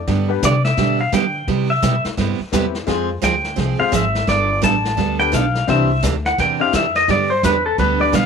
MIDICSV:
0, 0, Header, 1, 7, 480
1, 0, Start_track
1, 0, Key_signature, 0, "major"
1, 0, Tempo, 350467
1, 103, Time_signature, 4, 2, 24, 8
1, 11310, End_track
2, 0, Start_track
2, 0, Title_t, "Pedal steel guitar"
2, 0, Program_c, 0, 26
2, 618, Note_on_c, 0, 74, 80
2, 881, Note_off_c, 0, 74, 0
2, 887, Note_on_c, 0, 76, 85
2, 1333, Note_off_c, 0, 76, 0
2, 1378, Note_on_c, 0, 77, 82
2, 1544, Note_off_c, 0, 77, 0
2, 1561, Note_on_c, 0, 79, 85
2, 2282, Note_off_c, 0, 79, 0
2, 2330, Note_on_c, 0, 76, 87
2, 2775, Note_off_c, 0, 76, 0
2, 4437, Note_on_c, 0, 79, 81
2, 5160, Note_off_c, 0, 79, 0
2, 5199, Note_on_c, 0, 77, 89
2, 5375, Note_off_c, 0, 77, 0
2, 5408, Note_on_c, 0, 76, 80
2, 5844, Note_off_c, 0, 76, 0
2, 5873, Note_on_c, 0, 74, 80
2, 6316, Note_off_c, 0, 74, 0
2, 6354, Note_on_c, 0, 81, 96
2, 7078, Note_off_c, 0, 81, 0
2, 7115, Note_on_c, 0, 79, 93
2, 7293, Note_off_c, 0, 79, 0
2, 7320, Note_on_c, 0, 77, 80
2, 7760, Note_off_c, 0, 77, 0
2, 7805, Note_on_c, 0, 76, 79
2, 8242, Note_off_c, 0, 76, 0
2, 8576, Note_on_c, 0, 78, 83
2, 8744, Note_off_c, 0, 78, 0
2, 8767, Note_on_c, 0, 79, 92
2, 9050, Note_off_c, 0, 79, 0
2, 9057, Note_on_c, 0, 77, 91
2, 9224, Note_off_c, 0, 77, 0
2, 9250, Note_on_c, 0, 76, 75
2, 9532, Note_off_c, 0, 76, 0
2, 9532, Note_on_c, 0, 75, 78
2, 9702, Note_off_c, 0, 75, 0
2, 9733, Note_on_c, 0, 74, 85
2, 9999, Note_on_c, 0, 72, 86
2, 10013, Note_off_c, 0, 74, 0
2, 10174, Note_off_c, 0, 72, 0
2, 10198, Note_on_c, 0, 71, 75
2, 10484, Note_off_c, 0, 71, 0
2, 10489, Note_on_c, 0, 69, 81
2, 10659, Note_off_c, 0, 69, 0
2, 10675, Note_on_c, 0, 71, 70
2, 10963, Note_off_c, 0, 71, 0
2, 10970, Note_on_c, 0, 74, 91
2, 11140, Note_off_c, 0, 74, 0
2, 11163, Note_on_c, 0, 77, 96
2, 11310, Note_off_c, 0, 77, 0
2, 11310, End_track
3, 0, Start_track
3, 0, Title_t, "Upright piano"
3, 0, Program_c, 1, 0
3, 390, Note_on_c, 1, 55, 68
3, 393, Note_on_c, 1, 59, 63
3, 397, Note_on_c, 1, 62, 59
3, 402, Note_on_c, 1, 67, 67
3, 409, Note_on_c, 1, 71, 77
3, 557, Note_off_c, 1, 55, 0
3, 559, Note_off_c, 1, 59, 0
3, 561, Note_off_c, 1, 62, 0
3, 563, Note_off_c, 1, 67, 0
3, 567, Note_off_c, 1, 71, 0
3, 3448, Note_on_c, 1, 59, 57
3, 3451, Note_on_c, 1, 60, 53
3, 3462, Note_on_c, 1, 64, 52
3, 3464, Note_on_c, 1, 67, 56
3, 3470, Note_on_c, 1, 71, 61
3, 3729, Note_off_c, 1, 59, 0
3, 3731, Note_off_c, 1, 60, 0
3, 3736, Note_off_c, 1, 64, 0
3, 3738, Note_off_c, 1, 67, 0
3, 3740, Note_off_c, 1, 71, 0
3, 3924, Note_on_c, 1, 56, 66
3, 3928, Note_on_c, 1, 60, 59
3, 3936, Note_on_c, 1, 65, 58
3, 3938, Note_on_c, 1, 68, 58
3, 3945, Note_on_c, 1, 72, 71
3, 4207, Note_off_c, 1, 56, 0
3, 4209, Note_off_c, 1, 60, 0
3, 4213, Note_off_c, 1, 65, 0
3, 4215, Note_off_c, 1, 68, 0
3, 4218, Note_off_c, 1, 72, 0
3, 5184, Note_on_c, 1, 56, 62
3, 5194, Note_on_c, 1, 60, 59
3, 5197, Note_on_c, 1, 65, 64
3, 5203, Note_on_c, 1, 68, 63
3, 5208, Note_on_c, 1, 72, 76
3, 5355, Note_off_c, 1, 56, 0
3, 5360, Note_off_c, 1, 60, 0
3, 5362, Note_off_c, 1, 65, 0
3, 5365, Note_off_c, 1, 68, 0
3, 5368, Note_off_c, 1, 72, 0
3, 7107, Note_on_c, 1, 59, 63
3, 7113, Note_on_c, 1, 62, 62
3, 7114, Note_on_c, 1, 67, 61
3, 7127, Note_on_c, 1, 69, 60
3, 7129, Note_on_c, 1, 71, 74
3, 7277, Note_off_c, 1, 59, 0
3, 7280, Note_off_c, 1, 62, 0
3, 7281, Note_off_c, 1, 67, 0
3, 7287, Note_off_c, 1, 69, 0
3, 7288, Note_off_c, 1, 71, 0
3, 7767, Note_on_c, 1, 60, 71
3, 7772, Note_on_c, 1, 62, 68
3, 7780, Note_on_c, 1, 64, 65
3, 7784, Note_on_c, 1, 67, 64
3, 7789, Note_on_c, 1, 72, 82
3, 8049, Note_off_c, 1, 60, 0
3, 8051, Note_off_c, 1, 62, 0
3, 8055, Note_off_c, 1, 64, 0
3, 8057, Note_off_c, 1, 67, 0
3, 8060, Note_off_c, 1, 72, 0
3, 9033, Note_on_c, 1, 60, 67
3, 9035, Note_on_c, 1, 62, 59
3, 9043, Note_on_c, 1, 64, 64
3, 9045, Note_on_c, 1, 67, 64
3, 9054, Note_on_c, 1, 72, 72
3, 9199, Note_off_c, 1, 60, 0
3, 9201, Note_off_c, 1, 62, 0
3, 9205, Note_off_c, 1, 64, 0
3, 9206, Note_off_c, 1, 67, 0
3, 9210, Note_off_c, 1, 72, 0
3, 10948, Note_on_c, 1, 55, 68
3, 10951, Note_on_c, 1, 59, 63
3, 10957, Note_on_c, 1, 62, 69
3, 10964, Note_on_c, 1, 67, 67
3, 10971, Note_on_c, 1, 71, 81
3, 11117, Note_off_c, 1, 55, 0
3, 11118, Note_off_c, 1, 59, 0
3, 11121, Note_off_c, 1, 62, 0
3, 11124, Note_off_c, 1, 67, 0
3, 11128, Note_off_c, 1, 71, 0
3, 11310, End_track
4, 0, Start_track
4, 0, Title_t, "Steel-string acoustic guitar"
4, 0, Program_c, 2, 25
4, 103, Note_on_c, 2, 50, 59
4, 104, Note_on_c, 2, 55, 53
4, 111, Note_on_c, 2, 59, 57
4, 115, Note_on_c, 2, 67, 62
4, 116, Note_on_c, 2, 62, 62
4, 397, Note_off_c, 2, 50, 0
4, 397, Note_off_c, 2, 55, 0
4, 401, Note_off_c, 2, 59, 0
4, 403, Note_off_c, 2, 62, 0
4, 403, Note_off_c, 2, 67, 0
4, 586, Note_on_c, 2, 50, 79
4, 587, Note_on_c, 2, 55, 81
4, 596, Note_on_c, 2, 59, 76
4, 604, Note_on_c, 2, 62, 75
4, 604, Note_on_c, 2, 67, 73
4, 740, Note_off_c, 2, 50, 0
4, 741, Note_off_c, 2, 55, 0
4, 745, Note_off_c, 2, 59, 0
4, 749, Note_off_c, 2, 62, 0
4, 749, Note_off_c, 2, 67, 0
4, 1056, Note_on_c, 2, 50, 54
4, 1064, Note_on_c, 2, 55, 54
4, 1069, Note_on_c, 2, 59, 55
4, 1071, Note_on_c, 2, 62, 59
4, 1082, Note_on_c, 2, 67, 58
4, 1354, Note_off_c, 2, 50, 0
4, 1357, Note_off_c, 2, 55, 0
4, 1360, Note_off_c, 2, 59, 0
4, 1361, Note_off_c, 2, 62, 0
4, 1367, Note_off_c, 2, 67, 0
4, 1539, Note_on_c, 2, 50, 76
4, 1546, Note_on_c, 2, 55, 77
4, 1548, Note_on_c, 2, 59, 72
4, 1556, Note_on_c, 2, 62, 73
4, 1557, Note_on_c, 2, 67, 76
4, 1697, Note_off_c, 2, 50, 0
4, 1700, Note_off_c, 2, 55, 0
4, 1701, Note_off_c, 2, 59, 0
4, 1706, Note_off_c, 2, 62, 0
4, 1706, Note_off_c, 2, 67, 0
4, 2025, Note_on_c, 2, 48, 52
4, 2026, Note_on_c, 2, 55, 57
4, 2032, Note_on_c, 2, 59, 61
4, 2035, Note_on_c, 2, 64, 61
4, 2038, Note_on_c, 2, 67, 58
4, 2318, Note_off_c, 2, 48, 0
4, 2319, Note_off_c, 2, 55, 0
4, 2322, Note_off_c, 2, 59, 0
4, 2324, Note_off_c, 2, 64, 0
4, 2325, Note_off_c, 2, 67, 0
4, 2498, Note_on_c, 2, 48, 77
4, 2506, Note_on_c, 2, 55, 70
4, 2511, Note_on_c, 2, 59, 80
4, 2515, Note_on_c, 2, 64, 84
4, 2515, Note_on_c, 2, 67, 79
4, 2657, Note_off_c, 2, 48, 0
4, 2660, Note_off_c, 2, 55, 0
4, 2663, Note_off_c, 2, 59, 0
4, 2665, Note_off_c, 2, 64, 0
4, 2665, Note_off_c, 2, 67, 0
4, 2977, Note_on_c, 2, 48, 59
4, 2982, Note_on_c, 2, 55, 51
4, 2988, Note_on_c, 2, 59, 59
4, 2991, Note_on_c, 2, 64, 62
4, 2995, Note_on_c, 2, 67, 61
4, 3275, Note_off_c, 2, 48, 0
4, 3277, Note_off_c, 2, 55, 0
4, 3280, Note_off_c, 2, 59, 0
4, 3282, Note_off_c, 2, 64, 0
4, 3284, Note_off_c, 2, 67, 0
4, 3459, Note_on_c, 2, 48, 68
4, 3468, Note_on_c, 2, 55, 75
4, 3471, Note_on_c, 2, 59, 78
4, 3477, Note_on_c, 2, 64, 79
4, 3481, Note_on_c, 2, 67, 82
4, 3617, Note_off_c, 2, 48, 0
4, 3622, Note_off_c, 2, 55, 0
4, 3623, Note_off_c, 2, 59, 0
4, 3626, Note_off_c, 2, 64, 0
4, 3628, Note_off_c, 2, 67, 0
4, 3926, Note_on_c, 2, 53, 50
4, 3937, Note_on_c, 2, 60, 56
4, 3941, Note_on_c, 2, 65, 58
4, 3947, Note_on_c, 2, 68, 56
4, 4229, Note_off_c, 2, 53, 0
4, 4235, Note_off_c, 2, 60, 0
4, 4237, Note_off_c, 2, 65, 0
4, 4240, Note_off_c, 2, 68, 0
4, 4405, Note_on_c, 2, 53, 77
4, 4412, Note_on_c, 2, 60, 78
4, 4420, Note_on_c, 2, 65, 80
4, 4427, Note_on_c, 2, 68, 80
4, 4570, Note_off_c, 2, 53, 0
4, 4574, Note_off_c, 2, 60, 0
4, 4578, Note_off_c, 2, 65, 0
4, 4582, Note_off_c, 2, 68, 0
4, 4875, Note_on_c, 2, 53, 58
4, 4880, Note_on_c, 2, 60, 63
4, 4887, Note_on_c, 2, 65, 52
4, 4895, Note_on_c, 2, 68, 68
4, 5184, Note_off_c, 2, 53, 0
4, 5186, Note_off_c, 2, 60, 0
4, 5190, Note_off_c, 2, 65, 0
4, 5194, Note_off_c, 2, 68, 0
4, 5365, Note_on_c, 2, 53, 69
4, 5370, Note_on_c, 2, 60, 73
4, 5371, Note_on_c, 2, 65, 75
4, 5380, Note_on_c, 2, 68, 88
4, 5531, Note_off_c, 2, 53, 0
4, 5533, Note_off_c, 2, 60, 0
4, 5534, Note_off_c, 2, 65, 0
4, 5538, Note_off_c, 2, 68, 0
4, 5851, Note_on_c, 2, 55, 59
4, 5859, Note_on_c, 2, 59, 59
4, 5868, Note_on_c, 2, 62, 57
4, 5876, Note_on_c, 2, 69, 62
4, 6152, Note_off_c, 2, 55, 0
4, 6156, Note_off_c, 2, 59, 0
4, 6160, Note_off_c, 2, 62, 0
4, 6165, Note_off_c, 2, 69, 0
4, 6324, Note_on_c, 2, 55, 84
4, 6333, Note_on_c, 2, 59, 77
4, 6340, Note_on_c, 2, 62, 73
4, 6344, Note_on_c, 2, 69, 87
4, 6490, Note_off_c, 2, 55, 0
4, 6495, Note_off_c, 2, 59, 0
4, 6498, Note_off_c, 2, 62, 0
4, 6500, Note_off_c, 2, 69, 0
4, 6807, Note_on_c, 2, 55, 56
4, 6809, Note_on_c, 2, 59, 54
4, 6816, Note_on_c, 2, 62, 61
4, 6823, Note_on_c, 2, 69, 64
4, 7110, Note_off_c, 2, 55, 0
4, 7111, Note_off_c, 2, 59, 0
4, 7114, Note_off_c, 2, 62, 0
4, 7118, Note_off_c, 2, 69, 0
4, 7284, Note_on_c, 2, 55, 74
4, 7294, Note_on_c, 2, 59, 80
4, 7305, Note_on_c, 2, 62, 82
4, 7306, Note_on_c, 2, 69, 83
4, 7450, Note_off_c, 2, 55, 0
4, 7455, Note_off_c, 2, 59, 0
4, 7460, Note_off_c, 2, 62, 0
4, 7461, Note_off_c, 2, 69, 0
4, 7775, Note_on_c, 2, 48, 60
4, 7787, Note_on_c, 2, 52, 57
4, 7793, Note_on_c, 2, 62, 57
4, 7799, Note_on_c, 2, 67, 62
4, 8074, Note_off_c, 2, 48, 0
4, 8080, Note_off_c, 2, 52, 0
4, 8083, Note_off_c, 2, 62, 0
4, 8086, Note_off_c, 2, 67, 0
4, 8254, Note_on_c, 2, 48, 84
4, 8258, Note_on_c, 2, 52, 86
4, 8267, Note_on_c, 2, 62, 75
4, 8271, Note_on_c, 2, 67, 89
4, 8415, Note_off_c, 2, 48, 0
4, 8417, Note_off_c, 2, 52, 0
4, 8421, Note_off_c, 2, 62, 0
4, 8424, Note_off_c, 2, 67, 0
4, 8743, Note_on_c, 2, 48, 53
4, 8749, Note_on_c, 2, 52, 62
4, 8758, Note_on_c, 2, 62, 62
4, 8765, Note_on_c, 2, 67, 64
4, 9037, Note_off_c, 2, 48, 0
4, 9040, Note_off_c, 2, 52, 0
4, 9045, Note_off_c, 2, 62, 0
4, 9048, Note_off_c, 2, 67, 0
4, 9216, Note_on_c, 2, 48, 72
4, 9223, Note_on_c, 2, 52, 70
4, 9229, Note_on_c, 2, 62, 77
4, 9233, Note_on_c, 2, 67, 84
4, 9376, Note_off_c, 2, 48, 0
4, 9379, Note_off_c, 2, 52, 0
4, 9382, Note_off_c, 2, 62, 0
4, 9384, Note_off_c, 2, 67, 0
4, 9697, Note_on_c, 2, 50, 52
4, 9707, Note_on_c, 2, 55, 58
4, 9714, Note_on_c, 2, 59, 55
4, 9715, Note_on_c, 2, 62, 57
4, 9720, Note_on_c, 2, 67, 57
4, 9994, Note_off_c, 2, 50, 0
4, 9999, Note_off_c, 2, 55, 0
4, 10003, Note_off_c, 2, 59, 0
4, 10003, Note_off_c, 2, 62, 0
4, 10006, Note_off_c, 2, 67, 0
4, 10180, Note_on_c, 2, 50, 69
4, 10187, Note_on_c, 2, 55, 75
4, 10194, Note_on_c, 2, 59, 81
4, 10197, Note_on_c, 2, 62, 78
4, 10201, Note_on_c, 2, 67, 82
4, 10337, Note_off_c, 2, 50, 0
4, 10341, Note_off_c, 2, 55, 0
4, 10344, Note_off_c, 2, 59, 0
4, 10346, Note_off_c, 2, 62, 0
4, 10348, Note_off_c, 2, 67, 0
4, 10659, Note_on_c, 2, 50, 56
4, 10668, Note_on_c, 2, 55, 58
4, 10675, Note_on_c, 2, 59, 57
4, 10675, Note_on_c, 2, 62, 58
4, 10680, Note_on_c, 2, 67, 61
4, 10955, Note_off_c, 2, 50, 0
4, 10959, Note_off_c, 2, 55, 0
4, 10963, Note_off_c, 2, 59, 0
4, 10963, Note_off_c, 2, 62, 0
4, 10965, Note_off_c, 2, 67, 0
4, 11127, Note_on_c, 2, 50, 72
4, 11136, Note_on_c, 2, 55, 80
4, 11141, Note_on_c, 2, 59, 83
4, 11144, Note_on_c, 2, 62, 77
4, 11149, Note_on_c, 2, 67, 83
4, 11290, Note_off_c, 2, 50, 0
4, 11295, Note_off_c, 2, 55, 0
4, 11297, Note_off_c, 2, 59, 0
4, 11299, Note_off_c, 2, 62, 0
4, 11301, Note_off_c, 2, 67, 0
4, 11310, End_track
5, 0, Start_track
5, 0, Title_t, "Upright bass"
5, 0, Program_c, 3, 32
5, 104, Note_on_c, 3, 43, 84
5, 569, Note_off_c, 3, 43, 0
5, 585, Note_on_c, 3, 48, 89
5, 1050, Note_off_c, 3, 48, 0
5, 1058, Note_on_c, 3, 47, 81
5, 1527, Note_off_c, 3, 47, 0
5, 1538, Note_on_c, 3, 50, 80
5, 2007, Note_off_c, 3, 50, 0
5, 2021, Note_on_c, 3, 48, 75
5, 2488, Note_off_c, 3, 48, 0
5, 2500, Note_on_c, 3, 47, 89
5, 2784, Note_off_c, 3, 47, 0
5, 2980, Note_on_c, 3, 43, 82
5, 3264, Note_off_c, 3, 43, 0
5, 3461, Note_on_c, 3, 40, 85
5, 3928, Note_off_c, 3, 40, 0
5, 3937, Note_on_c, 3, 41, 76
5, 4407, Note_off_c, 3, 41, 0
5, 4417, Note_on_c, 3, 38, 82
5, 4887, Note_off_c, 3, 38, 0
5, 4897, Note_on_c, 3, 36, 78
5, 5183, Note_off_c, 3, 36, 0
5, 5376, Note_on_c, 3, 32, 87
5, 5846, Note_off_c, 3, 32, 0
5, 5854, Note_on_c, 3, 31, 81
5, 6325, Note_off_c, 3, 31, 0
5, 6336, Note_on_c, 3, 33, 91
5, 6806, Note_off_c, 3, 33, 0
5, 6819, Note_on_c, 3, 38, 90
5, 7288, Note_off_c, 3, 38, 0
5, 7298, Note_on_c, 3, 35, 92
5, 7767, Note_off_c, 3, 35, 0
5, 7777, Note_on_c, 3, 36, 85
5, 8246, Note_off_c, 3, 36, 0
5, 8259, Note_on_c, 3, 38, 91
5, 8727, Note_off_c, 3, 38, 0
5, 8741, Note_on_c, 3, 40, 79
5, 9209, Note_off_c, 3, 40, 0
5, 9219, Note_on_c, 3, 41, 85
5, 9687, Note_off_c, 3, 41, 0
5, 9700, Note_on_c, 3, 43, 79
5, 10167, Note_off_c, 3, 43, 0
5, 10181, Note_on_c, 3, 40, 92
5, 10648, Note_off_c, 3, 40, 0
5, 10659, Note_on_c, 3, 38, 85
5, 11127, Note_off_c, 3, 38, 0
5, 11136, Note_on_c, 3, 35, 85
5, 11310, Note_off_c, 3, 35, 0
5, 11310, End_track
6, 0, Start_track
6, 0, Title_t, "Muted upright bass strokes"
6, 2801, Note_on_c, 9, 29, 38
6, 2938, Note_off_c, 9, 29, 0
6, 3280, Note_on_c, 9, 29, 42
6, 3417, Note_off_c, 9, 29, 0
6, 5201, Note_on_c, 9, 29, 43
6, 5338, Note_off_c, 9, 29, 0
6, 11310, End_track
7, 0, Start_track
7, 0, Title_t, "Drums"
7, 102, Note_on_c, 9, 25, 43
7, 102, Note_on_c, 9, 38, 47
7, 103, Note_on_c, 9, 36, 28
7, 239, Note_off_c, 9, 38, 0
7, 240, Note_off_c, 9, 36, 0
7, 582, Note_on_c, 9, 36, 26
7, 582, Note_on_c, 9, 38, 61
7, 582, Note_on_c, 9, 44, 55
7, 719, Note_off_c, 9, 36, 0
7, 719, Note_off_c, 9, 38, 0
7, 719, Note_off_c, 9, 44, 0
7, 884, Note_on_c, 9, 38, 45
7, 1021, Note_off_c, 9, 38, 0
7, 1059, Note_off_c, 9, 25, 0
7, 1059, Note_on_c, 9, 25, 50
7, 1059, Note_on_c, 9, 38, 43
7, 1061, Note_on_c, 9, 36, 19
7, 1196, Note_off_c, 9, 38, 0
7, 1198, Note_off_c, 9, 36, 0
7, 1540, Note_on_c, 9, 38, 60
7, 1540, Note_on_c, 9, 44, 56
7, 1541, Note_on_c, 9, 36, 25
7, 1677, Note_off_c, 9, 36, 0
7, 1677, Note_off_c, 9, 38, 0
7, 1677, Note_off_c, 9, 44, 0
7, 2021, Note_on_c, 9, 36, 29
7, 2022, Note_off_c, 9, 25, 0
7, 2022, Note_on_c, 9, 25, 50
7, 2022, Note_on_c, 9, 38, 43
7, 2158, Note_off_c, 9, 36, 0
7, 2159, Note_off_c, 9, 38, 0
7, 2498, Note_on_c, 9, 38, 60
7, 2498, Note_on_c, 9, 44, 60
7, 2500, Note_on_c, 9, 36, 29
7, 2635, Note_off_c, 9, 38, 0
7, 2635, Note_off_c, 9, 44, 0
7, 2637, Note_off_c, 9, 36, 0
7, 2804, Note_on_c, 9, 38, 42
7, 2941, Note_off_c, 9, 38, 0
7, 2979, Note_on_c, 9, 36, 20
7, 2981, Note_off_c, 9, 25, 0
7, 2981, Note_on_c, 9, 25, 45
7, 2981, Note_on_c, 9, 38, 46
7, 3116, Note_off_c, 9, 36, 0
7, 3118, Note_off_c, 9, 38, 0
7, 3459, Note_on_c, 9, 36, 25
7, 3462, Note_on_c, 9, 38, 63
7, 3462, Note_on_c, 9, 44, 62
7, 3596, Note_off_c, 9, 36, 0
7, 3599, Note_off_c, 9, 38, 0
7, 3599, Note_off_c, 9, 44, 0
7, 3764, Note_on_c, 9, 38, 39
7, 3901, Note_off_c, 9, 38, 0
7, 3938, Note_on_c, 9, 36, 27
7, 3939, Note_off_c, 9, 25, 0
7, 3939, Note_on_c, 9, 25, 55
7, 3939, Note_on_c, 9, 38, 47
7, 4075, Note_off_c, 9, 36, 0
7, 4076, Note_off_c, 9, 38, 0
7, 4417, Note_on_c, 9, 36, 19
7, 4421, Note_on_c, 9, 38, 61
7, 4421, Note_on_c, 9, 44, 54
7, 4554, Note_off_c, 9, 36, 0
7, 4558, Note_off_c, 9, 38, 0
7, 4558, Note_off_c, 9, 44, 0
7, 4719, Note_on_c, 9, 38, 41
7, 4856, Note_off_c, 9, 38, 0
7, 4896, Note_on_c, 9, 36, 22
7, 4900, Note_off_c, 9, 25, 0
7, 4900, Note_on_c, 9, 25, 53
7, 4900, Note_on_c, 9, 38, 47
7, 5033, Note_off_c, 9, 36, 0
7, 5037, Note_off_c, 9, 38, 0
7, 5376, Note_on_c, 9, 36, 25
7, 5376, Note_on_c, 9, 38, 59
7, 5376, Note_on_c, 9, 44, 64
7, 5513, Note_off_c, 9, 36, 0
7, 5513, Note_off_c, 9, 38, 0
7, 5513, Note_off_c, 9, 44, 0
7, 5682, Note_on_c, 9, 38, 41
7, 5819, Note_off_c, 9, 38, 0
7, 5855, Note_on_c, 9, 36, 28
7, 5856, Note_off_c, 9, 25, 0
7, 5856, Note_on_c, 9, 25, 52
7, 5856, Note_on_c, 9, 38, 46
7, 5992, Note_off_c, 9, 36, 0
7, 5993, Note_off_c, 9, 38, 0
7, 6336, Note_on_c, 9, 36, 28
7, 6337, Note_on_c, 9, 38, 64
7, 6337, Note_on_c, 9, 44, 55
7, 6473, Note_off_c, 9, 36, 0
7, 6474, Note_off_c, 9, 38, 0
7, 6474, Note_off_c, 9, 44, 0
7, 6644, Note_on_c, 9, 38, 42
7, 6781, Note_off_c, 9, 38, 0
7, 6818, Note_on_c, 9, 36, 23
7, 6823, Note_off_c, 9, 25, 0
7, 6823, Note_on_c, 9, 25, 47
7, 6823, Note_on_c, 9, 38, 43
7, 6955, Note_off_c, 9, 36, 0
7, 6960, Note_off_c, 9, 38, 0
7, 7298, Note_on_c, 9, 36, 25
7, 7299, Note_on_c, 9, 38, 63
7, 7299, Note_on_c, 9, 44, 57
7, 7435, Note_off_c, 9, 36, 0
7, 7436, Note_off_c, 9, 38, 0
7, 7436, Note_off_c, 9, 44, 0
7, 7603, Note_on_c, 9, 38, 40
7, 7740, Note_off_c, 9, 38, 0
7, 7780, Note_off_c, 9, 25, 0
7, 7780, Note_on_c, 9, 25, 50
7, 7780, Note_on_c, 9, 36, 20
7, 7780, Note_on_c, 9, 38, 46
7, 7917, Note_off_c, 9, 36, 0
7, 7917, Note_off_c, 9, 38, 0
7, 8261, Note_on_c, 9, 36, 25
7, 8261, Note_on_c, 9, 38, 62
7, 8261, Note_on_c, 9, 44, 61
7, 8398, Note_off_c, 9, 36, 0
7, 8398, Note_off_c, 9, 38, 0
7, 8398, Note_off_c, 9, 44, 0
7, 8565, Note_on_c, 9, 38, 41
7, 8702, Note_off_c, 9, 38, 0
7, 8741, Note_off_c, 9, 25, 0
7, 8741, Note_on_c, 9, 25, 43
7, 8741, Note_on_c, 9, 36, 25
7, 8741, Note_on_c, 9, 38, 45
7, 8878, Note_off_c, 9, 36, 0
7, 8878, Note_off_c, 9, 38, 0
7, 9220, Note_on_c, 9, 36, 26
7, 9220, Note_on_c, 9, 38, 66
7, 9220, Note_on_c, 9, 44, 51
7, 9357, Note_off_c, 9, 36, 0
7, 9357, Note_off_c, 9, 38, 0
7, 9357, Note_off_c, 9, 44, 0
7, 9523, Note_on_c, 9, 38, 42
7, 9660, Note_off_c, 9, 38, 0
7, 9700, Note_off_c, 9, 25, 0
7, 9700, Note_on_c, 9, 25, 46
7, 9700, Note_on_c, 9, 38, 43
7, 9701, Note_on_c, 9, 36, 27
7, 9837, Note_off_c, 9, 38, 0
7, 9838, Note_off_c, 9, 36, 0
7, 10181, Note_on_c, 9, 36, 18
7, 10183, Note_on_c, 9, 38, 64
7, 10183, Note_on_c, 9, 44, 62
7, 10317, Note_off_c, 9, 36, 0
7, 10320, Note_off_c, 9, 38, 0
7, 10320, Note_off_c, 9, 44, 0
7, 10659, Note_on_c, 9, 36, 23
7, 10663, Note_off_c, 9, 25, 0
7, 10663, Note_on_c, 9, 25, 46
7, 10663, Note_on_c, 9, 38, 41
7, 10796, Note_off_c, 9, 36, 0
7, 10800, Note_off_c, 9, 38, 0
7, 11137, Note_on_c, 9, 36, 27
7, 11138, Note_on_c, 9, 38, 58
7, 11138, Note_on_c, 9, 44, 54
7, 11274, Note_off_c, 9, 36, 0
7, 11275, Note_off_c, 9, 38, 0
7, 11275, Note_off_c, 9, 44, 0
7, 11310, Note_off_c, 9, 25, 0
7, 11310, End_track
0, 0, End_of_file